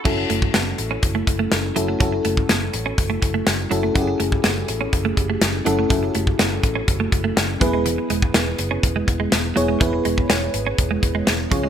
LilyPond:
<<
  \new Staff \with { instrumentName = "FM electric piano" } { \time 4/4 \key fis \minor \tempo 4 = 123 <cis' e' fis' a'>4 r2 r8 <cis' e' fis' a'>8 | <cis' e' fis' a'>4 r2 r8 <cis' e' fis' a'>8 | <cis' e' fis' g' gis'>4 r2 r8 <cis' e' fis' a'>8 | <cis' e' fis' a'>4 r2 r8 <b e' gis' b'>8~ |
<b e' gis' b'>4 r2 r8 <b e' gis' cis''>8 | <b e' gis' b'>4 r2 r8 <cis' eis' gis' cis''>8 | }
  \new Staff \with { instrumentName = "Clean electric guitar" } { \time 4/4 \key fis \minor fis16 r16 a16 r16 b16 r8 cis'16 r16 a16 r16 a16 r8 fis16 a16 | fis16 r16 a16 r16 b16 r8 cis'16 r16 a16 r16 a16 r8 fis16 a16 | fis16 r16 a16 r16 b16 r8 cis'16 r16 a16 r16 a16 r8 fis16 a16 | fis16 r16 a16 r16 b16 r8 cis'16 r16 a16 r16 a16 r8 fis16 gis16 |
e16 r16 gis16 r16 b16 r8 cis'16 r16 gis16 r16 gis16 r8 fis16 gis16 | e16 r16 gis16 r16 b16 r8 cis'16 r16 gis16 r16 gis16 r8 eis16 gis16 | }
  \new Staff \with { instrumentName = "Fingered electric bass" } { \clef bass \time 4/4 \key fis \minor fis,,8 fis,,8 fis,,8 a,,8 fis,,8 fis,,8 fis,,8 fis,,8 | fis,,8 fis,,8 fis,,8 a,,8 fis,,8 fis,,8 fis,,8 fis,,8 | fis,,8 fis,,8 fis,,8 a,,8 fis,,8 fis,,8 fis,,8 fis,,8 | fis,,8 fis,,8 fis,,8 a,,8 fis,,8 fis,,8 fis,,8 e,,8~ |
e,,8 e,,8 e,,8 fis,,8 e,,8 e,,8 e,,8 e,,8 | e,,8 e,,8 e,,8 gis,,8 e,,8 e,,8 e,,8 cis,8 | }
  \new DrumStaff \with { instrumentName = "Drums" } \drummode { \time 4/4 <cymc bd>8 hh16 bd16 <hh sn>8 hh8 <hh bd>8 <hh bd>8 <hh sn>8 hh8 | <hh bd>8 hh16 bd16 <hh sn>8 hh8 <hh bd>8 <hh bd>8 <hh sn>8 hh8 | <hh bd>8 hh16 bd16 <hh sn>8 hh8 <hh bd>8 <hh bd>8 <hh sn>8 hh8 | <hh bd>8 hh16 bd16 <hh sn>8 <hh bd>8 <hh bd>8 <hh bd>8 <hh sn>8 <hh bd>8 |
hh8 hh16 bd16 <hh sn>8 hh8 <hh bd>8 <hh bd>8 <hh sn>8 hh8 | <hh bd>8 hh16 bd16 <hh sn>8 hh8 <hh bd>8 <hh bd>8 <hh sn>8 <hh bd>8 | }
>>